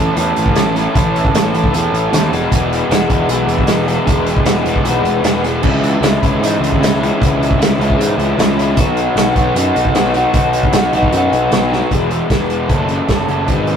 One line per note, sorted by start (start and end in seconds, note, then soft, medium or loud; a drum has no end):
0.00 0.11 A1 medium
0.00 0.14 A2 medium
0.00 0.14 E3 medium
0.00 0.14 A3 loud
0.00 0.15 C#4 loud
0.00 0.15 A4 medium
0.15 0.32 E2 medium
0.15 0.53 A2 medium
0.15 0.55 E3 medium
0.15 0.54 A3 loud
0.15 0.54 C#4 loud
0.15 0.55 A4 loud
0.15 closed hi-hat loud
0.36 0.52 A1 medium
0.36 closed hi-hat medium
0.46 kick medium
0.54 0.86 A1 medium
0.54 0.73 A2 medium
0.54 0.74 E3 medium
0.54 0.74 A3 medium
0.54 0.74 C#4 loud
0.54 0.75 A4 medium
0.54 snare loud
0.54 closed hi-hat medium
0.74 0.92 A2 medium
0.74 0.94 E3 medium
0.74 0.93 A3 loud
0.74 0.94 C#4 loud
0.74 0.93 A4 loud
0.74 snare soft
0.74 closed hi-hat medium
0.93 1.25 A1 loud
0.93 1.33 A2 loud
0.93 1.35 E3 loud
0.93 1.34 A3 loud
0.93 1.34 C#4 loud
0.93 1.34 A4 loud
0.93 kick loud
0.93 closed hi-hat loud
1.16 closed hi-hat medium
1.25 kick medium
1.34 1.49 A1 medium
1.34 1.51 A2 medium
1.34 1.53 E3 medium
1.34 1.53 A3 medium
1.34 1.53 C#4 medium
1.34 1.53 A4 medium
1.34 snare loud
1.34 closed hi-hat loud
1.53 1.68 A1 medium
1.53 1.72 A2 medium
1.53 1.72 E3 medium
1.53 1.72 A3 medium
1.53 1.73 C#4 medium
1.53 1.73 A4 loud
1.53 closed hi-hat medium
1.64 kick medium
1.73 1.88 E2 medium
1.73 2.11 A2 medium
1.73 2.11 E3 loud
1.73 2.12 A3 loud
1.73 2.12 C#4 medium
1.73 2.12 A4 loud
1.73 closed hi-hat loud
1.92 2.07 A1 medium
1.92 closed hi-hat medium
2.12 2.27 D#2 loud
2.12 2.30 A2 medium
2.12 2.32 E3 medium
2.12 2.31 A3 medium
2.12 2.31 C#4 loud
2.12 2.31 A4 medium
2.12 snare loud
2.12 closed hi-hat loud
2.31 2.47 E1 medium
2.31 2.51 E2 loud
2.31 2.50 B2 loud
2.31 2.51 E3 loud
2.31 2.52 G#3 loud
2.31 2.52 B3 loud
2.31 2.53 G#4 loud
2.31 snare soft
2.31 closed hi-hat medium
2.51 2.81 E1 loud
2.51 2.89 E2 medium
2.51 2.88 B2 medium
2.51 2.90 E3 medium
2.51 2.89 G#3 loud
2.51 2.90 B3 loud
2.51 2.91 G#4 loud
2.51 kick loud
2.51 closed hi-hat loud
2.73 closed hi-hat medium
2.89 3.05 E1 loud
2.89 3.08 E2 medium
2.89 3.08 B2 medium
2.89 3.09 E3 medium
2.89 3.10 G#3 medium
2.89 3.10 B3 medium
2.89 3.11 G#4 medium
2.89 snare loud
2.89 closed hi-hat loud
3.09 3.25 E1 medium
3.09 3.28 E2 medium
3.09 3.28 B2 medium
3.09 3.29 E3 medium
3.09 3.30 G#3 loud
3.09 3.29 B3 medium
3.09 3.30 G#4 medium
3.09 kick medium
3.09 closed hi-hat medium
3.29 3.44 B1 medium
3.29 3.66 E2 medium
3.29 3.67 B2 loud
3.29 3.67 E3 medium
3.29 3.68 G#3 loud
3.29 3.67 B3 loud
3.29 3.68 G#4 loud
3.29 closed hi-hat loud
3.47 3.63 E1 medium
3.47 closed hi-hat medium
3.58 kick medium
3.67 3.97 E1 medium
3.67 3.84 E2 medium
3.67 3.84 B2 medium
3.67 3.86 E3 medium
3.67 3.87 G#3 medium
3.67 3.86 B3 medium
3.67 3.87 G#4 medium
3.67 snare loud
3.67 closed hi-hat medium
3.85 4.04 E2 loud
3.85 4.05 B2 medium
3.85 4.05 E3 loud
3.85 4.06 G#3 medium
3.85 4.05 B3 medium
3.85 4.06 G#4 medium
3.85 closed hi-hat medium
4.05 4.37 E1 loud
4.05 4.44 E2 loud
4.05 4.44 B2 medium
4.05 4.45 E3 loud
4.05 4.45 G#3 loud
4.05 4.45 B3 loud
4.05 4.46 G#4 loud
4.05 kick loud
4.05 closed hi-hat medium
4.26 closed hi-hat medium
4.36 kick medium
4.45 4.61 E1 loud
4.45 4.65 E2 medium
4.45 4.65 B2 medium
4.45 4.66 E3 medium
4.45 4.67 G#3 medium
4.45 4.66 B3 medium
4.45 4.68 G#4 medium
4.45 snare loud
4.45 closed hi-hat loud
4.65 4.80 E1 medium
4.65 4.83 E2 medium
4.65 4.84 B2 medium
4.65 4.84 E3 medium
4.65 4.85 G#3 medium
4.65 4.84 B3 medium
4.65 4.85 G#4 medium
4.65 closed hi-hat medium
4.76 kick medium
4.84 5.00 B1 medium
4.84 5.24 E2 medium
4.84 5.23 B2 loud
4.84 5.25 E3 medium
4.84 5.25 G#3 medium
4.84 5.25 B3 loud
4.84 5.26 G#4 medium
4.84 closed hi-hat loud
5.02 5.18 E1 loud
5.02 closed hi-hat medium
5.23 5.65 E1 medium
5.23 5.42 E2 medium
5.23 5.42 B2 loud
5.23 5.43 E3 medium
5.23 5.44 G#3 medium
5.23 5.43 B3 medium
5.23 5.44 G#4 medium
5.23 snare loud
5.23 closed hi-hat loud
5.43 5.62 E2 medium
5.43 5.62 B2 medium
5.43 5.62 E3 medium
5.43 5.62 G#3 loud
5.43 5.62 B3 medium
5.43 5.63 G#4 medium
5.43 snare soft
5.43 closed hi-hat medium
5.62 5.94 C#2 medium
5.62 6.01 C#3 medium
5.62 6.01 E3 medium
5.62 6.02 G#3 loud
5.62 6.01 C#4 medium
5.62 6.03 E4 loud
5.62 kick loud
5.62 crash medium
5.84 closed hi-hat medium
6.01 6.17 C#2 loud
6.01 6.21 C#3 medium
6.01 6.22 E3 medium
6.01 6.22 G#3 medium
6.01 6.23 C#4 medium
6.01 6.23 E4 loud
6.01 snare loud
6.01 closed hi-hat loud
6.22 6.37 C#2 medium
6.22 6.40 C#3 medium
6.22 6.40 E3 medium
6.22 6.41 G#3 medium
6.22 6.41 C#4 loud
6.22 6.41 E4 medium
6.22 kick medium
6.22 closed hi-hat medium
6.39 6.55 G#2 medium
6.39 6.79 C#3 loud
6.39 6.79 E3 medium
6.39 6.80 G#3 loud
6.39 6.79 C#4 medium
6.39 6.80 E4 loud
6.43 closed hi-hat loud
6.59 6.75 C#2 loud
6.64 closed hi-hat medium
6.72 kick medium
6.78 7.09 C#2 loud
6.78 7.00 C#3 medium
6.78 7.01 E3 medium
6.78 7.01 G#3 medium
6.78 7.01 C#4 medium
6.78 7.02 E4 loud
6.83 snare loud
6.83 closed hi-hat loud
7.01 7.19 C#3 medium
7.01 7.20 E3 medium
7.01 7.20 G#3 loud
7.01 7.20 C#4 loud
7.01 7.21 E4 loud
7.01 closed hi-hat medium
7.20 7.51 C#2 loud
7.20 7.57 C#3 medium
7.20 7.58 E3 medium
7.20 7.59 G#3 medium
7.20 7.59 C#4 medium
7.20 7.59 E4 loud
7.20 kick loud
7.20 closed hi-hat medium
7.43 closed hi-hat medium
7.51 kick medium
7.58 7.74 C#2 loud
7.58 7.79 C#3 medium
7.58 7.79 E3 medium
7.58 7.79 G#3 medium
7.58 7.80 C#4 medium
7.58 7.79 E4 medium
7.58 closed hi-hat loud
7.63 snare loud
7.78 7.94 C#2 medium
7.78 7.96 C#3 medium
7.78 7.97 E3 medium
7.78 7.97 G#3 medium
7.78 7.97 C#4 medium
7.78 7.97 E4 loud
7.78 closed hi-hat medium
7.90 kick medium
7.97 8.13 G#2 medium
7.97 8.37 C#3 medium
7.97 8.37 E3 loud
7.97 8.38 G#3 loud
7.97 8.38 C#4 loud
7.97 8.38 E4 loud
7.97 closed hi-hat loud
8.18 8.33 C#2 medium
8.18 closed hi-hat medium
8.37 8.78 C#2 loud
8.37 8.56 C#3 medium
8.37 8.56 E3 medium
8.37 8.56 G#3 loud
8.37 8.56 C#4 medium
8.37 8.57 E4 medium
8.37 snare loud
8.37 closed hi-hat medium
8.57 8.75 C#3 medium
8.57 8.75 E3 medium
8.57 8.76 G#3 loud
8.57 8.76 C#4 loud
8.57 8.76 E4 loud
8.57 snare soft
8.57 closed hi-hat medium
8.77 9.07 B1 medium
8.77 9.16 B2 medium
8.77 9.15 F#3 medium
8.77 9.15 B3 loud
8.77 9.16 D#4 loud
8.77 9.16 F#4 loud
8.77 kick loud
8.77 closed hi-hat loud
8.97 closed hi-hat medium
9.16 9.31 B1 medium
9.16 9.35 B2 medium
9.16 9.35 F#3 medium
9.16 9.36 B3 medium
9.16 9.36 D#4 medium
9.16 9.36 F#4 loud
9.16 snare loud
9.16 closed hi-hat loud
9.35 9.50 B1 medium
9.35 9.53 B2 medium
9.35 9.54 F#3 medium
9.35 9.55 B3 medium
9.35 9.55 D#4 medium
9.35 9.55 F#4 loud
9.35 kick medium
9.35 closed hi-hat medium
9.54 9.70 F#2 medium
9.54 9.93 B2 medium
9.54 9.94 F#3 medium
9.54 9.95 B3 loud
9.54 9.94 D#4 loud
9.54 9.95 F#4 loud
9.54 closed hi-hat loud
9.76 9.90 B1 loud
9.76 closed hi-hat medium
9.85 kick medium
9.94 10.25 B1 medium
9.94 10.13 B2 medium
9.94 10.14 F#3 loud
9.94 10.14 B3 medium
9.94 10.14 D#4 medium
9.94 10.15 F#4 loud
9.94 snare loud
9.94 closed hi-hat medium
10.14 10.32 B2 medium
10.14 10.33 F#3 loud
10.14 10.32 B3 medium
10.14 10.33 D#4 medium
10.14 10.33 F#4 loud
10.14 closed hi-hat medium
10.33 10.63 B1 medium
10.33 10.71 B2 loud
10.33 10.71 F#3 loud
10.33 10.72 B3 medium
10.33 10.72 D#4 loud
10.33 10.73 F#4 loud
10.33 kick loud
10.33 closed hi-hat medium
10.53 closed hi-hat medium
10.63 kick medium
10.72 10.89 B1 loud
10.72 10.92 B2 medium
10.72 10.93 F#3 medium
10.72 10.93 B3 medium
10.72 10.93 D#4 medium
10.72 10.94 F#4 medium
10.72 snare loud
10.72 closed hi-hat loud
10.93 11.08 B1 medium
10.93 11.14 B2 medium
10.93 11.14 F#3 medium
10.93 11.14 B3 medium
10.93 11.15 D#4 medium
10.93 11.15 F#4 loud
10.93 closed hi-hat medium
11.03 kick medium
11.12 11.27 F#2 medium
11.12 11.50 B2 medium
11.12 11.50 F#3 loud
11.12 11.51 B3 loud
11.12 11.52 F#4 loud
11.12 closed hi-hat loud
11.16 11.51 D#4 loud
11.32 11.47 B1 loud
11.32 closed hi-hat medium
11.51 11.81 B1 medium
11.51 11.72 B2 medium
11.51 11.72 F#3 medium
11.51 11.72 B3 medium
11.51 11.73 D#4 medium
11.51 11.73 F#4 medium
11.51 snare loud
11.51 closed hi-hat medium
11.73 11.90 B2 medium
11.73 11.91 F#3 loud
11.73 11.91 B3 medium
11.73 11.91 D#4 loud
11.73 11.91 F#4 medium
11.73 snare medium
11.91 12.20 E1 medium
11.91 12.30 E2 medium
11.91 12.31 B2 medium
11.91 12.11 E3 medium
11.91 12.10 G#3 medium
11.91 12.09 B3 medium
11.91 12.08 G#4 medium
11.91 kick medium
11.91 closed hi-hat medium
12.10 12.31 E3 soft
12.10 12.31 G#3 medium
12.10 12.32 B3 medium
12.10 12.31 G#4 medium
12.10 closed hi-hat medium
12.30 12.69 E1 medium
12.30 12.69 E2 medium
12.30 12.69 B2 medium
12.30 12.69 E3 medium
12.30 12.69 G#3 medium
12.30 12.70 B3 medium
12.30 12.69 G#4 medium
12.30 kick loud
12.30 snare loud
12.30 closed hi-hat medium
12.50 closed hi-hat medium
12.69 12.99 F#1 medium
12.69 13.09 F#2 medium
12.69 13.09 C#3 medium
12.69 12.90 F#3 medium
12.69 12.89 A3 medium
12.69 12.89 C#4 medium
12.69 12.89 A4 medium
12.69 kick loud
12.69 closed hi-hat medium
12.89 13.09 F#3 medium
12.89 13.09 A3 medium
12.89 13.09 C#4 medium
12.89 13.10 A4 medium
12.89 closed hi-hat medium
13.08 13.23 F#1 medium
13.08 13.30 F#3 medium
13.08 13.30 A3 medium
13.08 13.28 C#4 medium
13.08 13.29 A4 medium
13.08 kick medium
13.08 snare medium
13.08 closed hi-hat medium
13.28 13.48 F#1 medium
13.28 13.48 F#3 medium
13.28 13.48 A3 medium
13.28 13.48 C#4 medium
13.28 13.48 A4 medium
13.28 closed hi-hat medium
13.48 13.77 G#1 medium
13.48 13.77 G#2 medium
13.48 13.77 D#3 medium
13.48 13.70 G#3 medium
13.48 13.69 B3 medium
13.48 13.69 D#4 medium
13.48 13.68 G#4 medium
13.48 kick loud
13.48 closed hi-hat medium
13.67 13.77 G#3 medium
13.67 13.77 B3 medium
13.67 13.77 D#4 medium
13.67 13.77 G#4 medium
13.67 closed hi-hat medium